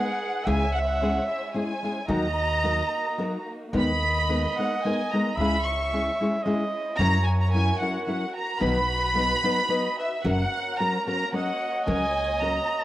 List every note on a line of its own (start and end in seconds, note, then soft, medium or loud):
0.00 0.44 G#3 medium
0.00 0.44 D#4 medium
0.00 0.46 G#4 loud
0.00 0.44 B4 medium
0.00 0.46 F#5 loud
0.45 1.17 C#2 loud
0.45 0.64 C#3 medium
0.45 2.07 G#3 medium
0.45 0.63 G#3 medium
0.45 0.64 C#4 medium
0.45 2.06 E4 medium
0.45 0.64 E4 medium
0.45 0.64 G#4 medium
0.45 2.07 C#5 medium
0.45 1.82 E5 loud
0.45 0.75 G#5 loud
0.73 0.80 F#5 medium
0.79 0.87 E5 medium
0.86 1.28 F#5 medium
1.01 1.18 G#3 soft
1.01 1.18 C#4 medium
1.01 1.18 E4 medium
1.01 1.19 G#4 medium
1.28 1.53 E5 medium
1.54 1.71 G#3 medium
1.54 1.71 C#4 medium
1.54 1.72 E4 medium
1.54 1.72 G#4 medium
1.54 2.06 G#5 medium
1.83 1.98 G#3 medium
1.83 1.99 C#4 medium
1.83 1.99 E4 medium
1.83 2.00 G#4 medium
2.08 2.80 D#2 loud
2.08 2.25 D#3 medium
2.08 2.26 F#3 medium
2.08 5.34 A#3 medium
2.08 2.26 D#4 medium
2.08 3.72 D#4 medium
2.08 3.71 F#4 medium
2.08 2.26 F#4 medium
2.08 2.26 A#4 medium
2.08 3.43 D#5 loud
2.08 3.44 A#5 loud
2.62 2.80 F#3 medium
2.62 2.80 D#4 medium
2.62 2.81 F#4 medium
2.62 2.81 A#4 medium
3.18 3.35 F#3 medium
3.18 3.36 D#4 medium
3.18 3.36 F#4 medium
3.18 3.36 A#4 medium
3.72 4.44 D#2 medium
3.72 3.90 D#3 medium
3.72 3.90 G#3 medium
3.72 6.96 G#3 medium
3.72 5.35 B3 medium
3.72 3.91 B3 medium
3.72 3.90 D#4 medium
3.72 3.91 A#4 medium
3.72 5.38 D#5 loud
3.78 4.55 B5 loud
4.28 4.45 G#3 medium
4.28 4.45 B3 medium
4.28 4.46 D#4 medium
4.28 4.46 A#4 medium
4.58 4.73 G#3 medium
4.58 4.73 B3 soft
4.58 4.73 D#4 medium
4.58 4.74 A#4 medium
4.58 4.84 F#5 medium
4.84 5.01 G#3 medium
4.84 5.01 B3 medium
4.84 5.01 D#4 medium
4.84 5.01 A#4 medium
4.84 5.11 G#5 loud
5.13 5.28 G#3 medium
5.13 5.28 B3 medium
5.13 5.28 D#4 medium
5.13 5.28 A#4 medium
5.13 5.38 A#5 medium
5.36 6.07 C#2 medium
5.36 5.55 C#3 medium
5.36 5.55 G#3 medium
5.36 5.56 C#4 medium
5.36 8.58 E4 medium
5.36 6.97 C#5 medium
5.36 6.45 E5 loud
5.36 5.63 B5 loud
5.41 5.56 E4 medium
5.41 5.56 G#4 medium
5.64 6.19 C#6 loud
5.93 6.09 G#3 medium
5.93 6.09 C#4 medium
5.93 6.09 E4 medium
5.93 6.09 G#4 medium
6.21 6.35 G#3 soft
6.21 6.35 C#4 medium
6.21 6.36 E4 soft
6.21 6.36 G#4 medium
6.43 6.62 G#3 medium
6.43 6.62 C#4 medium
6.43 6.63 E4 medium
6.43 6.63 G#4 medium
6.43 7.01 D#5 loud
6.97 7.69 F#2 loud
6.97 7.16 F#3 medium
6.97 7.16 C#4 medium
6.97 7.16 E4 medium
6.97 10.21 F#4 medium
6.97 8.59 A#4 medium
6.97 7.17 A#4 medium
6.97 8.36 C#5 medium
6.97 7.25 A#5 loud
7.26 7.39 G#5 medium
7.41 7.52 A#5 medium
7.54 7.70 F#3 medium
7.54 7.70 C#4 medium
7.54 7.71 E4 medium
7.54 7.71 A#4 medium
7.54 7.80 G#5 loud
7.80 7.96 F#3 medium
7.80 7.97 C#4 medium
7.80 7.97 E4 medium
7.80 7.97 A#4 medium
7.80 8.06 F#5 medium
8.07 8.24 F#3 medium
8.07 8.24 C#4 medium
8.07 8.24 E4 medium
8.07 8.25 A#4 medium
8.07 8.33 F#5 medium
8.37 8.62 A#5 loud
8.55 8.64 A#4 medium
8.60 9.32 B1 medium
8.60 8.77 B2 medium
8.60 8.77 D#3 medium
8.60 8.78 F#3 medium
8.60 8.78 B3 medium
8.60 10.23 D#4 medium
8.60 8.78 D#4 medium
8.60 8.78 B4 medium
8.60 10.24 B4 medium
8.60 9.71 B4 medium
8.60 9.99 B5 loud
9.14 9.32 F#3 medium
9.14 9.32 B3 medium
9.14 9.32 D#4 medium
9.14 9.33 B4 medium
9.43 9.59 F#3 medium
9.43 9.59 B3 soft
9.43 9.59 D#4 medium
9.43 9.60 B4 medium
9.68 9.86 F#3 medium
9.68 9.87 B3 medium
9.68 9.87 D#4 medium
9.68 9.87 B4 medium
9.68 9.98 D#5 loud
9.99 10.11 B4 medium
9.99 10.24 E5 medium
10.24 10.43 F#1 loud
10.24 10.42 F#3 medium
10.24 12.84 A#3 medium
10.24 10.42 C#4 medium
10.24 10.42 F#4 medium
10.24 12.84 F#4 medium
10.24 11.37 A#4 medium
10.24 10.42 A#4 medium
10.24 12.84 C#5 medium
10.24 10.79 F#5 loud
10.78 10.97 F#3 medium
10.78 10.97 C#4 medium
10.78 10.97 F#4 medium
10.78 10.97 A#4 medium
10.78 11.07 A#5 loud
11.06 11.22 F#3 medium
11.06 11.23 C#4 soft
11.06 11.23 F#4 medium
11.06 11.23 A#4 medium
11.06 11.32 A#5 loud
11.32 11.50 F#3 soft
11.32 11.51 C#4 medium
11.32 11.51 F#4 medium
11.32 11.51 A#4 medium
11.32 12.84 D#5 loud
11.32 11.84 F#5 medium
11.86 12.58 C#2 loud
11.86 12.04 F#3 medium
11.86 12.04 C#4 medium
11.86 12.04 F#4 medium
11.86 12.04 A#4 medium
11.86 12.39 G#5 loud
12.40 12.58 F#3 medium
12.40 12.58 C#4 medium
12.40 12.59 F#4 medium
12.40 12.59 A#4 medium
12.40 12.84 A#5 medium